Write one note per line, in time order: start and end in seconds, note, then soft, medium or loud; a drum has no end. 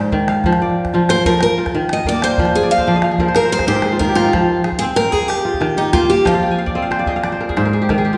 0.00 0.50 G#2 medium
0.00 0.12 A#3 medium
0.00 0.51 F4 medium
0.00 0.91 A#4 medium
0.04 calabash click soft
0.12 0.50 D#3 medium
0.12 calabash thump medium
0.28 1.29 F5 medium
0.28 calabash click medium
0.44 0.93 F3 medium
0.44 calabash thump medium
0.44 calabash click soft
0.53 calabash click medium
0.62 1.73 D5 medium
0.70 calabash click soft
0.85 calabash thump medium
0.85 calabash click soft
0.93 1.25 F3 medium
0.93 1.57 F4 medium
0.93 calabash click soft
1.09 2.37 A#4 medium
1.09 1.26 C5 loud
1.09 calabash click medium
1.25 1.46 F3 medium
1.25 1.41 A#4 medium
1.25 calabash thump medium
1.34 calabash click soft
1.41 1.57 A#4 medium
1.41 calabash click medium
1.58 3.09 F4 medium
1.58 calabash click soft
1.66 calabash thump soft
1.66 calabash click medium
1.75 2.43 D#3 medium
1.89 2.06 D#5 medium
1.89 calabash click medium
1.97 calabash click soft
2.05 3.99 A#3 medium
2.05 2.22 D5 medium
2.05 calabash thump medium
2.22 2.79 C5 medium
2.22 2.56 C5 medium
2.22 calabash click medium
2.38 2.86 F3 medium
2.38 calabash thump medium
2.45 calabash click soft
2.55 2.72 G#4 medium
2.63 2.87 D5 medium
2.71 2.93 D#5 medium
2.71 3.01 F5 medium
2.78 3.28 C5 medium
2.78 calabash thump soft
2.78 calabash click soft
2.87 3.18 F3 medium
2.87 3.98 D5 medium
2.87 calabash click soft
2.96 4.03 D#5 medium
3.02 4.04 F5 medium
3.02 calabash click medium
3.11 3.36 G#4 medium
3.18 3.40 F3 medium
3.18 3.52 A#4 medium
3.18 calabash thump medium
3.18 calabash click soft
3.27 3.44 C5 medium
3.27 calabash click soft
3.35 3.58 G#4 medium
3.35 3.52 A#4 medium
3.35 calabash click medium
3.45 4.64 C5 medium
3.52 3.75 A#4 medium
3.52 3.67 C5 loud
3.59 3.83 G#4 medium
3.59 calabash thump soft
3.59 calabash click soft
3.67 4.37 G#2 medium
3.67 3.89 G4 medium
3.67 3.99 C5 loud
3.67 calabash click soft
3.76 5.03 A#4 medium
3.82 4.15 G#4 medium
3.82 calabash click medium
3.91 4.16 F4 medium
3.91 calabash click soft
3.99 4.37 D#3 medium
3.99 4.24 D#4 medium
3.99 4.30 A#4 medium
3.99 calabash thump medium
4.09 4.70 G4 medium
4.15 4.61 F4 medium
4.15 5.44 F4 medium
4.15 calabash click medium
4.25 5.87 D#4 medium
4.33 5.34 F3 medium
4.33 calabash thump medium
4.33 calabash click medium
4.57 calabash click soft
4.64 5.12 G#4 medium
4.64 calabash click medium
4.72 calabash thump soft
4.79 6.61 C4 medium
4.79 4.84 G#4 medium
4.96 5.12 A#4 medium
4.96 calabash click medium
5.05 calabash click soft
5.12 5.28 G#4 medium
5.12 5.83 G#4 medium
5.12 calabash thump medium
5.28 5.79 G4 medium
5.28 calabash click medium
5.38 calabash click soft
5.45 6.96 F4 medium
5.45 calabash click soft
5.54 calabash thump soft
5.61 6.31 D#3 medium
5.61 calabash click medium
5.77 5.93 D#4 medium
5.77 6.57 G4 medium
5.93 7.86 A#3 medium
5.93 6.10 F4 medium
5.93 calabash thump medium
5.93 calabash click medium
6.10 6.26 G4 medium
6.25 7.28 F3 medium
6.25 7.52 F4 medium
6.25 6.72 D#5 medium
6.25 calabash thump medium
6.25 calabash click medium
6.34 6.58 F5 medium
6.43 7.13 G5 medium
6.51 7.41 G#5 medium
6.51 calabash click soft
6.58 6.82 F5 medium
6.66 6.99 D5 medium
6.66 calabash thump soft
6.75 8.18 C4 medium
6.75 7.05 D#5 medium
6.82 7.16 F5 medium
6.91 7.32 C5 medium
6.91 calabash click medium
6.99 7.24 D5 medium
6.99 calabash click soft
7.06 7.49 G#4 medium
7.06 7.30 D#5 medium
7.06 calabash thump soft
7.16 8.16 F5 medium
7.24 7.96 D5 medium
7.24 calabash click medium
7.32 7.56 C5 medium
7.32 calabash click soft
7.40 7.65 A#4 medium
7.40 calabash click soft
7.49 7.73 G#4 medium
7.49 calabash thump soft
7.56 8.18 G#2 medium
7.56 8.18 C5 medium
7.56 calabash click medium
7.65 7.89 A#4 medium
7.73 7.97 G#4 medium
7.82 8.04 G4 medium
7.89 8.18 D#3 medium
7.89 8.18 A#4 medium
7.89 calabash thump medium
7.89 calabash click soft
7.98 8.18 G#4 medium
8.05 8.18 G4 medium
8.13 8.18 F4 medium